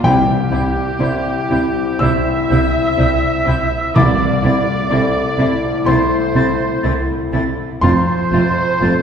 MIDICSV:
0, 0, Header, 1, 12, 480
1, 0, Start_track
1, 0, Key_signature, 0, "major"
1, 0, Tempo, 952381
1, 20, Time_signature, 4, 2, 24, 8
1, 500, Tempo, 1020408
1, 980, Tempo, 974026
1, 1940, Tempo, 960000
1, 3380, Tempo, 988468
1, 4439, End_track
2, 0, Start_track
2, 0, Title_t, "Flute"
2, 0, Program_c, 0, 73
2, 18, Note_on_c, 0, 91, 60
2, 72, Note_off_c, 0, 91, 0
2, 262, Note_on_c, 0, 91, 62
2, 316, Note_off_c, 0, 91, 0
2, 510, Note_on_c, 0, 91, 66
2, 562, Note_off_c, 0, 91, 0
2, 746, Note_on_c, 0, 91, 55
2, 799, Note_off_c, 0, 91, 0
2, 984, Note_on_c, 0, 91, 67
2, 1038, Note_off_c, 0, 91, 0
2, 1219, Note_on_c, 0, 91, 64
2, 1272, Note_off_c, 0, 91, 0
2, 1462, Note_on_c, 0, 91, 63
2, 1516, Note_off_c, 0, 91, 0
2, 1701, Note_on_c, 0, 91, 61
2, 1755, Note_off_c, 0, 91, 0
2, 1942, Note_on_c, 0, 93, 65
2, 1996, Note_off_c, 0, 93, 0
2, 2185, Note_on_c, 0, 93, 62
2, 2238, Note_off_c, 0, 93, 0
2, 2418, Note_on_c, 0, 93, 62
2, 2471, Note_off_c, 0, 93, 0
2, 2657, Note_on_c, 0, 93, 59
2, 2710, Note_off_c, 0, 93, 0
2, 2898, Note_on_c, 0, 93, 63
2, 2951, Note_off_c, 0, 93, 0
2, 3137, Note_on_c, 0, 93, 68
2, 3192, Note_off_c, 0, 93, 0
2, 3373, Note_on_c, 0, 93, 68
2, 3427, Note_off_c, 0, 93, 0
2, 3615, Note_on_c, 0, 93, 61
2, 3670, Note_off_c, 0, 93, 0
2, 3862, Note_on_c, 0, 93, 63
2, 3916, Note_off_c, 0, 93, 0
2, 4102, Note_on_c, 0, 93, 59
2, 4156, Note_off_c, 0, 93, 0
2, 4342, Note_on_c, 0, 93, 63
2, 4395, Note_off_c, 0, 93, 0
2, 4439, End_track
3, 0, Start_track
3, 0, Title_t, "Oboe"
3, 0, Program_c, 1, 68
3, 21, Note_on_c, 1, 67, 88
3, 980, Note_on_c, 1, 76, 108
3, 988, Note_off_c, 1, 67, 0
3, 1937, Note_on_c, 1, 74, 106
3, 1944, Note_off_c, 1, 76, 0
3, 2893, Note_on_c, 1, 72, 82
3, 2900, Note_off_c, 1, 74, 0
3, 3618, Note_off_c, 1, 72, 0
3, 3861, Note_on_c, 1, 72, 101
3, 4439, Note_off_c, 1, 72, 0
3, 4439, End_track
4, 0, Start_track
4, 0, Title_t, "Viola section"
4, 0, Program_c, 2, 48
4, 21, Note_on_c, 2, 67, 92
4, 962, Note_off_c, 2, 67, 0
4, 978, Note_on_c, 2, 76, 104
4, 1938, Note_off_c, 2, 76, 0
4, 1940, Note_on_c, 2, 74, 104
4, 2873, Note_off_c, 2, 74, 0
4, 2892, Note_on_c, 2, 72, 87
4, 3617, Note_off_c, 2, 72, 0
4, 3859, Note_on_c, 2, 72, 100
4, 4439, Note_off_c, 2, 72, 0
4, 4439, End_track
5, 0, Start_track
5, 0, Title_t, "Grand piano"
5, 0, Program_c, 3, 0
5, 0, Control_c, 3, 64, 127
5, 21, Note_on_c, 3, 79, 103
5, 24, Note_on_c, 3, 36, 70
5, 28, Control_c, 3, 64, 0
5, 114, Control_c, 3, 64, 127
5, 488, Note_off_c, 3, 36, 0
5, 500, Note_on_c, 3, 60, 59
5, 501, Note_on_c, 3, 64, 54
5, 503, Note_on_c, 3, 72, 58
5, 962, Note_off_c, 3, 79, 0
5, 970, Note_on_c, 3, 88, 107
5, 1915, Note_off_c, 3, 88, 0
5, 1920, Note_off_c, 3, 60, 0
5, 1921, Note_off_c, 3, 64, 0
5, 1921, Note_off_c, 3, 72, 0
5, 1938, Note_on_c, 3, 86, 113
5, 1943, Note_on_c, 3, 36, 74
5, 1949, Control_c, 3, 64, 0
5, 2033, Control_c, 3, 64, 127
5, 2406, Note_off_c, 3, 36, 0
5, 2415, Note_on_c, 3, 60, 58
5, 2419, Note_on_c, 3, 69, 60
5, 2420, Note_on_c, 3, 64, 54
5, 2871, Note_off_c, 3, 86, 0
5, 2891, Note_on_c, 3, 84, 105
5, 3598, Note_off_c, 3, 84, 0
5, 3838, Note_off_c, 3, 60, 0
5, 3840, Note_off_c, 3, 64, 0
5, 3840, Note_off_c, 3, 69, 0
5, 3853, Note_on_c, 3, 84, 108
5, 3862, Note_on_c, 3, 41, 68
5, 3869, Control_c, 3, 64, 0
5, 3956, Control_c, 3, 64, 127
5, 4328, Note_off_c, 3, 41, 0
5, 4346, Note_on_c, 3, 60, 55
5, 4348, Note_on_c, 3, 65, 54
5, 4349, Note_on_c, 3, 69, 54
5, 4439, Note_off_c, 3, 60, 0
5, 4439, Note_off_c, 3, 65, 0
5, 4439, Note_off_c, 3, 69, 0
5, 4439, Note_off_c, 3, 84, 0
5, 4439, End_track
6, 0, Start_track
6, 0, Title_t, "Clarinet"
6, 0, Program_c, 4, 71
6, 18, Note_on_c, 4, 64, 78
6, 99, Note_off_c, 4, 64, 0
6, 260, Note_on_c, 4, 64, 72
6, 341, Note_off_c, 4, 64, 0
6, 498, Note_on_c, 4, 64, 63
6, 573, Note_off_c, 4, 64, 0
6, 738, Note_on_c, 4, 64, 70
6, 813, Note_off_c, 4, 64, 0
6, 978, Note_on_c, 4, 64, 64
6, 1057, Note_off_c, 4, 64, 0
6, 1217, Note_on_c, 4, 64, 68
6, 1296, Note_off_c, 4, 64, 0
6, 1454, Note_on_c, 4, 64, 63
6, 1533, Note_off_c, 4, 64, 0
6, 1696, Note_on_c, 4, 64, 66
6, 1775, Note_off_c, 4, 64, 0
6, 1936, Note_on_c, 4, 64, 78
6, 2016, Note_off_c, 4, 64, 0
6, 2175, Note_on_c, 4, 64, 69
6, 2255, Note_off_c, 4, 64, 0
6, 2415, Note_on_c, 4, 64, 69
6, 2495, Note_off_c, 4, 64, 0
6, 2648, Note_on_c, 4, 64, 74
6, 2728, Note_off_c, 4, 64, 0
6, 2885, Note_on_c, 4, 64, 71
6, 2965, Note_off_c, 4, 64, 0
6, 3133, Note_on_c, 4, 64, 65
6, 3213, Note_off_c, 4, 64, 0
6, 3381, Note_on_c, 4, 64, 61
6, 3459, Note_off_c, 4, 64, 0
6, 3622, Note_on_c, 4, 64, 59
6, 3700, Note_off_c, 4, 64, 0
6, 3863, Note_on_c, 4, 65, 79
6, 3940, Note_off_c, 4, 65, 0
6, 4106, Note_on_c, 4, 65, 69
6, 4184, Note_off_c, 4, 65, 0
6, 4345, Note_on_c, 4, 65, 68
6, 4422, Note_off_c, 4, 65, 0
6, 4439, End_track
7, 0, Start_track
7, 0, Title_t, "Violin section"
7, 0, Program_c, 5, 48
7, 16, Note_on_c, 5, 64, 72
7, 56, Note_off_c, 5, 64, 0
7, 258, Note_on_c, 5, 64, 61
7, 299, Note_off_c, 5, 64, 0
7, 505, Note_on_c, 5, 64, 61
7, 542, Note_off_c, 5, 64, 0
7, 744, Note_on_c, 5, 64, 65
7, 782, Note_off_c, 5, 64, 0
7, 983, Note_on_c, 5, 64, 73
7, 1022, Note_off_c, 5, 64, 0
7, 1225, Note_on_c, 5, 64, 67
7, 1265, Note_off_c, 5, 64, 0
7, 1460, Note_on_c, 5, 64, 61
7, 1500, Note_off_c, 5, 64, 0
7, 1698, Note_on_c, 5, 64, 68
7, 1737, Note_off_c, 5, 64, 0
7, 1936, Note_on_c, 5, 64, 76
7, 1975, Note_off_c, 5, 64, 0
7, 2179, Note_on_c, 5, 64, 62
7, 2219, Note_off_c, 5, 64, 0
7, 2416, Note_on_c, 5, 64, 71
7, 2456, Note_off_c, 5, 64, 0
7, 2657, Note_on_c, 5, 64, 74
7, 2697, Note_off_c, 5, 64, 0
7, 2894, Note_on_c, 5, 64, 70
7, 2934, Note_off_c, 5, 64, 0
7, 3135, Note_on_c, 5, 64, 70
7, 3175, Note_off_c, 5, 64, 0
7, 3376, Note_on_c, 5, 64, 66
7, 3415, Note_off_c, 5, 64, 0
7, 3617, Note_on_c, 5, 64, 70
7, 3656, Note_off_c, 5, 64, 0
7, 3856, Note_on_c, 5, 65, 72
7, 3895, Note_off_c, 5, 65, 0
7, 4100, Note_on_c, 5, 65, 62
7, 4139, Note_off_c, 5, 65, 0
7, 4334, Note_on_c, 5, 65, 66
7, 4373, Note_off_c, 5, 65, 0
7, 4439, End_track
8, 0, Start_track
8, 0, Title_t, "French horn section"
8, 0, Program_c, 6, 60
8, 21, Note_on_c, 6, 60, 80
8, 21, Note_on_c, 6, 64, 82
8, 1920, Note_off_c, 6, 60, 0
8, 1920, Note_off_c, 6, 64, 0
8, 1933, Note_on_c, 6, 64, 95
8, 1934, Note_on_c, 6, 57, 90
8, 3779, Note_off_c, 6, 57, 0
8, 3779, Note_off_c, 6, 64, 0
8, 3861, Note_on_c, 6, 57, 84
8, 3862, Note_on_c, 6, 65, 79
8, 4439, Note_off_c, 6, 57, 0
8, 4439, Note_off_c, 6, 65, 0
8, 4439, End_track
9, 0, Start_track
9, 0, Title_t, "Violin section"
9, 0, Program_c, 7, 48
9, 21, Note_on_c, 7, 55, 69
9, 21, Note_on_c, 7, 60, 77
9, 61, Note_off_c, 7, 55, 0
9, 61, Note_off_c, 7, 60, 0
9, 258, Note_on_c, 7, 60, 62
9, 264, Note_on_c, 7, 55, 59
9, 299, Note_off_c, 7, 60, 0
9, 304, Note_off_c, 7, 55, 0
9, 500, Note_on_c, 7, 55, 68
9, 500, Note_on_c, 7, 60, 63
9, 537, Note_off_c, 7, 60, 0
9, 538, Note_off_c, 7, 55, 0
9, 739, Note_on_c, 7, 60, 50
9, 740, Note_on_c, 7, 55, 55
9, 776, Note_off_c, 7, 60, 0
9, 777, Note_off_c, 7, 55, 0
9, 976, Note_on_c, 7, 55, 67
9, 976, Note_on_c, 7, 60, 67
9, 1015, Note_off_c, 7, 55, 0
9, 1015, Note_off_c, 7, 60, 0
9, 1219, Note_on_c, 7, 60, 63
9, 1221, Note_on_c, 7, 55, 67
9, 1259, Note_off_c, 7, 60, 0
9, 1260, Note_off_c, 7, 55, 0
9, 1451, Note_on_c, 7, 60, 65
9, 1452, Note_on_c, 7, 55, 70
9, 1491, Note_off_c, 7, 60, 0
9, 1492, Note_off_c, 7, 55, 0
9, 1687, Note_on_c, 7, 55, 62
9, 1689, Note_on_c, 7, 60, 63
9, 1727, Note_off_c, 7, 55, 0
9, 1728, Note_off_c, 7, 60, 0
9, 1935, Note_on_c, 7, 60, 81
9, 1936, Note_on_c, 7, 57, 77
9, 1975, Note_off_c, 7, 57, 0
9, 1975, Note_off_c, 7, 60, 0
9, 2175, Note_on_c, 7, 57, 69
9, 2176, Note_on_c, 7, 60, 65
9, 2215, Note_off_c, 7, 57, 0
9, 2216, Note_off_c, 7, 60, 0
9, 2412, Note_on_c, 7, 60, 70
9, 2415, Note_on_c, 7, 57, 71
9, 2452, Note_off_c, 7, 60, 0
9, 2455, Note_off_c, 7, 57, 0
9, 2658, Note_on_c, 7, 57, 55
9, 2658, Note_on_c, 7, 60, 57
9, 2698, Note_off_c, 7, 57, 0
9, 2698, Note_off_c, 7, 60, 0
9, 2887, Note_on_c, 7, 57, 72
9, 2888, Note_on_c, 7, 60, 66
9, 2927, Note_off_c, 7, 57, 0
9, 2928, Note_off_c, 7, 60, 0
9, 3131, Note_on_c, 7, 57, 56
9, 3132, Note_on_c, 7, 60, 69
9, 3171, Note_off_c, 7, 57, 0
9, 3172, Note_off_c, 7, 60, 0
9, 3381, Note_on_c, 7, 57, 66
9, 3382, Note_on_c, 7, 60, 66
9, 3420, Note_off_c, 7, 57, 0
9, 3421, Note_off_c, 7, 60, 0
9, 3618, Note_on_c, 7, 57, 61
9, 3621, Note_on_c, 7, 60, 58
9, 3657, Note_off_c, 7, 57, 0
9, 3659, Note_off_c, 7, 60, 0
9, 3858, Note_on_c, 7, 60, 72
9, 3859, Note_on_c, 7, 57, 66
9, 3897, Note_off_c, 7, 60, 0
9, 3898, Note_off_c, 7, 57, 0
9, 4105, Note_on_c, 7, 60, 68
9, 4107, Note_on_c, 7, 57, 67
9, 4144, Note_off_c, 7, 60, 0
9, 4146, Note_off_c, 7, 57, 0
9, 4340, Note_on_c, 7, 60, 61
9, 4343, Note_on_c, 7, 57, 68
9, 4379, Note_off_c, 7, 60, 0
9, 4382, Note_off_c, 7, 57, 0
9, 4439, End_track
10, 0, Start_track
10, 0, Title_t, "Cello section"
10, 0, Program_c, 8, 48
10, 22, Note_on_c, 8, 48, 80
10, 62, Note_off_c, 8, 48, 0
10, 264, Note_on_c, 8, 48, 67
10, 304, Note_off_c, 8, 48, 0
10, 501, Note_on_c, 8, 48, 72
10, 539, Note_off_c, 8, 48, 0
10, 742, Note_on_c, 8, 48, 72
10, 779, Note_off_c, 8, 48, 0
10, 982, Note_on_c, 8, 48, 81
10, 1022, Note_off_c, 8, 48, 0
10, 1225, Note_on_c, 8, 48, 71
10, 1265, Note_off_c, 8, 48, 0
10, 1461, Note_on_c, 8, 48, 72
10, 1500, Note_off_c, 8, 48, 0
10, 1702, Note_on_c, 8, 48, 67
10, 1741, Note_off_c, 8, 48, 0
10, 1939, Note_on_c, 8, 48, 89
10, 1979, Note_off_c, 8, 48, 0
10, 2179, Note_on_c, 8, 48, 72
10, 2219, Note_off_c, 8, 48, 0
10, 2414, Note_on_c, 8, 48, 75
10, 2454, Note_off_c, 8, 48, 0
10, 2652, Note_on_c, 8, 48, 79
10, 2692, Note_off_c, 8, 48, 0
10, 2889, Note_on_c, 8, 48, 81
10, 2929, Note_off_c, 8, 48, 0
10, 3132, Note_on_c, 8, 48, 74
10, 3172, Note_off_c, 8, 48, 0
10, 3376, Note_on_c, 8, 48, 78
10, 3415, Note_off_c, 8, 48, 0
10, 3617, Note_on_c, 8, 48, 77
10, 3655, Note_off_c, 8, 48, 0
10, 3860, Note_on_c, 8, 41, 83
10, 3899, Note_off_c, 8, 41, 0
10, 4102, Note_on_c, 8, 41, 66
10, 4140, Note_off_c, 8, 41, 0
10, 4338, Note_on_c, 8, 41, 73
10, 4376, Note_off_c, 8, 41, 0
10, 4439, End_track
11, 0, Start_track
11, 0, Title_t, "Timpani"
11, 0, Program_c, 10, 47
11, 17, Note_on_c, 10, 48, 76
11, 718, Note_off_c, 10, 48, 0
11, 1938, Note_on_c, 10, 48, 92
11, 2634, Note_off_c, 10, 48, 0
11, 4439, End_track
12, 0, Start_track
12, 0, Title_t, "Double bass section"
12, 0, Program_c, 11, 48
12, 24, Note_on_c, 11, 36, 84
12, 64, Note_off_c, 11, 36, 0
12, 261, Note_on_c, 11, 36, 67
12, 302, Note_off_c, 11, 36, 0
12, 503, Note_on_c, 11, 36, 74
12, 540, Note_off_c, 11, 36, 0
12, 742, Note_on_c, 11, 36, 65
12, 780, Note_off_c, 11, 36, 0
12, 979, Note_on_c, 11, 36, 82
12, 1018, Note_off_c, 11, 36, 0
12, 1219, Note_on_c, 11, 36, 75
12, 1259, Note_off_c, 11, 36, 0
12, 1457, Note_on_c, 11, 36, 82
12, 1496, Note_off_c, 11, 36, 0
12, 1701, Note_on_c, 11, 36, 70
12, 1740, Note_off_c, 11, 36, 0
12, 1944, Note_on_c, 11, 36, 86
12, 1984, Note_off_c, 11, 36, 0
12, 2180, Note_on_c, 11, 36, 72
12, 2220, Note_off_c, 11, 36, 0
12, 2416, Note_on_c, 11, 36, 74
12, 2456, Note_off_c, 11, 36, 0
12, 2652, Note_on_c, 11, 36, 67
12, 2692, Note_off_c, 11, 36, 0
12, 2891, Note_on_c, 11, 36, 84
12, 2931, Note_off_c, 11, 36, 0
12, 3131, Note_on_c, 11, 36, 75
12, 3171, Note_off_c, 11, 36, 0
12, 3377, Note_on_c, 11, 36, 77
12, 3416, Note_off_c, 11, 36, 0
12, 3615, Note_on_c, 11, 36, 71
12, 3654, Note_off_c, 11, 36, 0
12, 3858, Note_on_c, 11, 29, 81
12, 3897, Note_off_c, 11, 29, 0
12, 4101, Note_on_c, 11, 29, 66
12, 4140, Note_off_c, 11, 29, 0
12, 4341, Note_on_c, 11, 29, 77
12, 4379, Note_off_c, 11, 29, 0
12, 4439, End_track
0, 0, End_of_file